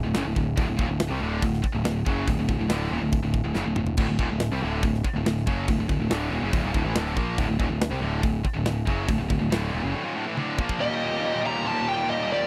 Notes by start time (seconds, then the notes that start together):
0.04 D1 D2 A2
0.14 F#1 F#2 C#3, snare, open hi-hat
0.25 D1 D2 A2
0.36 D1 D2 A2, kick
0.57 D1 D2 A2, kick, open hi-hat
0.67 D1 D2 A2
0.79 D#1 D#2 A#2, kick
0.89 D1 D2 A2
1.00 snare, open hi-hat
1.10 C2 C3 G3
1.21 D1 D2 A2 D3
1.42 D1 D2 A2, kick, open hi-hat
1.53 snare
1.63 muted picked electric bass stroke, muted distorted electric guitar stroke, kick
1.74 D1 D2 A2
1.84 D1 D2 A2, snare, open hi-hat
2.06 F#1 F#2 C#3 F#3, kick
2.27 D1 D2 A2, kick, open hi-hat
2.37 D1 D2 A2
2.48 D1 D2 A2, kick
2.59 D1 D2 A2
2.68 D1 D2 A2 D3, snare, open hi-hat
2.91 D#1 D#2 A#2
3.01 D1 D2 A2
3.12 kick, open hi-hat
3.22 D1 D2 A2
3.34 kick
3.44 D1 D2 A2
3.54 F#1 F#2 C#3, snare
3.65 D1 D2 A2
3.75 D1 D2 A2, mid tom
3.87 floor tom
3.97 D1 D2 A2, kick, crash
4.08 D1 D2 A2
4.19 D#1 D#2 A#2, kick
4.30 D1 D2 A2
4.40 snare, open hi-hat
4.52 C2 C3 G3
4.62 D1 D2 A2 D3
4.83 D1 D2 A2, kick, open hi-hat
4.94 snare
5.04 muted distorted electric guitar stroke, muted picked electric bass stroke, kick
5.14 D1 D2 A2
5.24 D1 D2 A2, snare, open hi-hat
5.37 snare
5.46 F#1 F#2 C#3 F#3, kick
5.68 D1 D2 A2, kick, open hi-hat
5.78 D1 D2 A2
5.88 D1 D2 A2, kick
6.00 D1 D2 A2
6.10 D1 D2 A2 D3, snare, open hi-hat
6.31 D#1 D#2 A#2
6.42 F#1 F#2 C#3
6.52 D1 D2 A2, kick, open hi-hat
6.64 D#1 D#2 A#2
6.73 D1 D2 A2, kick
6.84 A1 A2 E3
6.94 D1 D2 A2 D3, snare, open hi-hat
7.06 snare
7.16 A#1 A#2 F3 A#3, kick
7.38 D1 D2 A2, kick, open hi-hat
7.49 D1 D2 A2
7.59 D#1 D#2 A#2, kick
7.69 D1 D2 A2
7.81 snare, open hi-hat
7.90 C2 C3 G3
8.01 D1 D2 A2 D3
8.23 D1 D2 A2, kick, open hi-hat
8.44 muted picked electric bass stroke, muted distorted electric guitar stroke, kick
8.56 D1 D2 A2
8.66 D1 D2 A2, snare, open hi-hat
8.87 F#1 F#2 C#3 F#3, kick
9.08 D1 D2 A2, kick, open hi-hat
9.20 D1 D2 A2
9.30 D1 D2 A2, kick
9.41 D1 D2 A2
9.52 D1 D2 A2 D3, snare, open hi-hat
9.73 D#1 D#2 A#2
9.83 F#1 F#2 C#3
9.94 D2 A2
10.05 D#2 A#2
10.16 D2 A2
10.27 A2 E3
10.37 D2 A2 D3, high tom
10.59 A#2 F3 A#3, kick
10.69 kick
10.79 D#2 A#2 D#3 G3 G4 D#5
10.86 D#2 G3 G4
10.90 A#2
10.94 D#2 A#2 G3 G4
11.02 D#2 A#2 G3 G4
11.09 D#2 A#2 G3 G4
11.17 D#2 A#2 G3 G4
11.26 D#2 A#2 G3 G4
11.32 D#2 A#2 G3 G4
11.40 D#2 A#2 G3 G4
11.47 D#2 A#2 G3 G4 A#5
11.54 D#2 G3 G4
11.59 A#2 G3
11.64 D#2 A#2 D#3 G4 A5
11.71 D#2 A#2 G3 G4
11.79 D#2 A#2 G3 G4
11.86 D#2 A#2 G3 G4 G5
11.94 D#2 A#2 G3 G4
12.03 D#2 A#2 G3 G4
12.10 D#2 A#2 G3 G4 D#5
12.17 D#2 A#2 G3 G4
12.25 D#2 A#2 G3 G4
12.32 D#2 A#2 G3 G4 D5
12.40 D#2 A#2 G3 G4